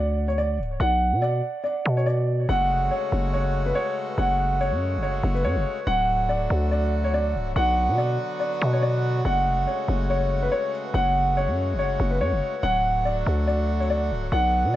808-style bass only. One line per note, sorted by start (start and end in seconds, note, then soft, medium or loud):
0.00 0.60 D2 loud
0.59 0.79 C#1 loud
0.80 1.14 B1 loud
1.12 1.42 B2 loud
1.86 2.46 B2 loud
2.49 2.71 F#1 loud
2.70 2.83 F1 loud
2.81 2.91 F#1 loud
3.12 3.73 F#1 loud
4.18 4.73 F#1 loud
4.71 4.99 F#2 loud
4.97 5.22 F#1 loud
5.23 5.46 F#1 loud
5.45 5.57 F#2 loud
5.56 5.65 F#1 loud
5.87 6.48 D1 loud
6.50 7.36 D2 loud
7.35 7.55 C#1 loud
7.56 7.90 B1 loud
7.88 8.18 B2 loud
8.62 9.22 B2 loud
9.25 9.48 F#1 loud
9.46 9.59 F1 loud
9.57 9.67 F#1 loud
9.88 10.49 F#1 loud
10.94 11.49 F#1 loud
11.48 11.75 F#2 loud
11.74 11.98 F#1 loud
12.00 12.22 F#1 loud
12.21 12.34 F#2 medium
12.32 12.41 F#1 loud
12.63 13.24 D1 loud
13.26 14.12 D2 loud
14.11 14.31 C#1 loud
14.32 14.66 B1 loud
14.64 14.76 B2 loud